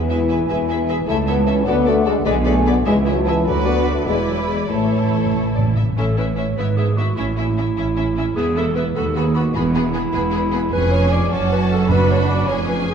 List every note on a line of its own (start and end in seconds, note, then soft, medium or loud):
0.00 0.42 E1 medium
0.00 0.42 E2 medium
0.00 1.05 E3 medium
0.00 1.04 B4 medium
0.00 1.08 G#5 medium
0.10 0.20 G#4 soft
0.10 0.18 B4 medium
0.10 0.18 E5 medium
0.29 0.39 G#4 medium
0.29 0.37 B4 soft
0.29 0.37 E5 soft
0.48 1.01 E1 medium
0.48 1.01 E2 medium
0.48 0.57 G#4 medium
0.48 0.56 B4 medium
0.48 0.57 E5 medium
0.69 0.77 G#4 medium
0.69 0.77 B4 medium
0.69 0.76 E5 medium
0.88 0.97 G#4 medium
0.88 0.96 B4 medium
0.88 0.96 E5 medium
1.07 1.59 C#2 medium
1.07 1.68 E3 medium
1.07 1.16 A3 loud
1.07 1.16 E4 medium
1.07 1.16 A4 medium
1.07 1.67 C#5 medium
1.07 1.16 E5 medium
1.07 1.63 A5 medium
1.27 1.47 B3 loud
1.27 1.35 E4 medium
1.27 1.36 A4 medium
1.27 1.35 E5 medium
1.47 1.66 C#4 medium
1.47 1.55 E4 medium
1.47 1.54 A4 medium
1.47 1.54 E5 medium
1.65 2.18 D2 medium
1.65 2.25 D3 medium
1.65 1.85 B3 loud
1.65 1.75 F#4 medium
1.65 1.74 A4 medium
1.65 2.24 D5 medium
1.65 1.75 D5 medium
1.65 2.25 F#5 medium
1.85 2.06 A3 loud
1.85 1.94 F#4 medium
1.85 1.95 A4 medium
1.85 1.93 D5 medium
2.05 2.15 G#3 medium
2.05 2.14 F#4 medium
2.05 2.13 A4 medium
2.05 2.13 D5 medium
2.25 2.79 B1 medium
2.25 2.79 B2 medium
2.25 2.85 D3 medium
2.25 2.35 G#3 loud
2.25 2.34 G#4 medium
2.25 2.33 B4 medium
2.25 2.89 D5 medium
2.25 2.33 D5 medium
2.25 2.85 G#5 medium
2.45 2.66 A3 loud
2.45 2.54 G#4 medium
2.45 2.53 B4 medium
2.45 2.53 D5 medium
2.65 2.75 B3 medium
2.65 2.74 G#4 medium
2.65 2.73 B4 medium
2.65 2.74 D5 medium
2.85 3.38 C#2 medium
2.85 3.39 C#2 medium
2.85 3.45 E3 medium
2.85 2.95 G#3 loud
2.85 2.95 E4 medium
2.85 2.93 G#4 medium
2.85 3.29 C#5 medium
2.85 2.94 E5 medium
2.85 2.93 G#5 medium
3.06 3.26 F#3 loud
3.06 3.14 E4 medium
3.06 3.14 G#4 medium
3.06 3.14 E5 medium
3.15 3.45 A5 medium
3.26 3.47 E3 medium
3.26 3.34 E4 medium
3.26 3.34 G#4 medium
3.26 3.35 E5 medium
3.45 4.02 D2 medium
3.45 4.08 D3 medium
3.45 3.67 F#3 loud
3.45 4.03 F#4 medium
3.45 4.03 B4 medium
3.45 4.02 D5 medium
3.45 4.05 D5 medium
3.45 4.06 B5 medium
3.67 3.87 B3 loud
3.87 4.07 A3 medium
4.06 4.69 E1 medium
4.06 4.69 E2 medium
4.06 4.52 E3 medium
4.06 4.16 G#3 medium
4.06 4.68 E4 medium
4.06 4.68 B4 medium
4.06 4.68 D5 medium
4.06 4.71 D5 medium
4.06 4.69 B5 medium
4.27 4.37 F#3 medium
4.48 4.69 G#3 medium
4.68 5.74 A1 medium
4.68 4.76 A2 soft
4.68 5.74 A2 medium
4.68 5.74 E3 medium
4.68 5.31 A3 medium
4.68 5.74 E4 medium
4.68 5.76 A4 medium
4.68 5.76 C#5 medium
4.68 5.29 C#5 medium
4.68 5.76 A5 medium
4.78 4.85 A2 soft
4.86 4.93 A2 soft
5.02 5.09 A2 soft
5.26 5.33 A2 medium
5.34 5.41 A2 medium
5.34 5.43 C#5 medium
5.42 5.49 A2 medium
5.51 5.57 A2 medium
5.55 5.65 A2 medium
5.55 5.63 D5 soft
5.66 5.73 A2 medium
5.74 5.81 A2 medium
5.74 5.84 E5 medium
5.83 5.89 A2 medium
5.90 5.97 A2 medium
5.97 6.51 A1 medium
5.97 6.50 A2 medium
5.97 6.05 C#4 medium
5.97 6.06 E4 medium
5.97 6.16 A4 loud
5.97 6.06 E5 medium
6.17 6.25 C#4 medium
6.17 6.25 E4 medium
6.17 6.27 B4 medium
6.17 6.27 E5 medium
6.37 6.45 C#4 medium
6.37 6.45 E4 soft
6.37 6.59 C#5 medium
6.37 6.45 E5 soft
6.57 7.10 G#1 medium
6.57 7.10 G#2 medium
6.57 6.65 B3 medium
6.57 6.65 E4 medium
6.57 6.76 B4 medium
6.57 6.66 E5 medium
6.77 6.86 B3 medium
6.77 6.86 E4 medium
6.77 6.98 G#4 medium
6.77 6.86 E5 medium
6.96 7.06 B3 medium
6.96 7.06 E4 medium
6.96 7.17 F#4 medium
6.96 7.06 E5 medium
7.15 7.70 A1 medium
7.15 7.70 A2 medium
7.15 7.26 C#4 medium
7.15 8.35 E4 loud
7.15 7.25 E4 medium
7.15 7.25 E5 medium
7.37 7.46 C#4 medium
7.37 7.45 E4 medium
7.37 7.46 E5 medium
7.57 7.65 C#4 medium
7.57 7.65 E4 soft
7.57 7.66 E5 medium
7.76 8.29 A1 medium
7.76 8.29 A2 medium
7.76 7.85 C#4 medium
7.76 7.85 E4 medium
7.76 7.85 E5 medium
7.97 8.05 C#4 medium
7.97 8.05 E4 soft
7.97 8.05 E5 medium
8.17 8.25 C#4 medium
8.17 8.25 E4 medium
8.17 8.25 E5 medium
8.36 8.89 E1 medium
8.36 8.89 E2 medium
8.36 8.44 B3 medium
8.36 8.45 E4 medium
8.36 8.58 G#4 loud
8.36 8.45 E5 medium
8.56 8.64 B3 medium
8.56 8.64 E4 medium
8.56 8.75 A4 loud
8.56 8.64 E5 medium
8.75 8.83 B3 medium
8.75 8.84 E4 medium
8.75 8.85 B4 loud
8.75 8.84 E5 medium
8.95 9.48 D#2 medium
8.95 9.04 B3 medium
8.95 9.03 F#4 medium
8.95 9.17 A4 loud
8.95 9.04 B5 medium
9.15 9.24 B3 medium
9.15 9.23 F#4 medium
9.15 9.37 G#4 medium
9.15 9.24 B5 medium
9.34 9.43 B3 medium
9.34 9.55 F#4 medium
9.34 9.44 F#4 medium
9.34 9.42 B5 medium
9.54 10.07 E1 medium
9.54 10.07 E2 medium
9.54 9.63 B3 medium
9.54 10.70 E4 loud
9.54 9.62 G#4 medium
9.54 9.64 B5 medium
9.74 9.83 B3 medium
9.74 9.82 G#4 medium
9.74 9.82 B5 medium
9.94 10.02 B3 medium
9.94 10.02 G#4 medium
9.94 10.03 B5 medium
10.13 10.65 E1 medium
10.13 10.65 E2 medium
10.13 10.21 B3 medium
10.13 10.21 G#4 medium
10.13 10.21 B5 medium
10.31 10.41 B3 medium
10.31 10.39 G#4 medium
10.31 10.42 B5 medium
10.51 10.61 B3 medium
10.51 10.59 G#4 medium
10.51 10.61 B5 medium
10.72 11.27 F1 medium
10.72 11.27 F2 medium
10.72 11.28 C#4 medium
10.72 11.27 G#4 medium
10.72 10.93 B4 loud
10.72 11.27 G#5 medium
10.91 11.14 C#5 loud
11.12 11.33 D5 loud
11.31 12.48 F#1 medium
11.31 12.48 F#2 medium
11.31 11.88 C#4 medium
11.31 11.88 F#4 medium
11.31 11.51 C#5 loud
11.31 11.90 A5 medium
11.52 11.60 B4 loud
11.72 11.90 A4 loud
11.89 12.44 F#2 medium
11.89 12.48 D4 medium
11.89 12.47 F#4 medium
11.89 12.09 B4 loud
11.89 12.48 B5 medium
12.11 12.19 C#5 loud
12.29 12.47 D5 loud
12.48 12.94 F1 medium
12.48 12.94 F2 medium
12.48 12.94 C#4 medium
12.48 12.94 G#4 medium
12.48 12.57 C#5 loud
12.48 12.94 G#5 medium
12.68 12.77 B4 loud
12.89 12.94 G#4 medium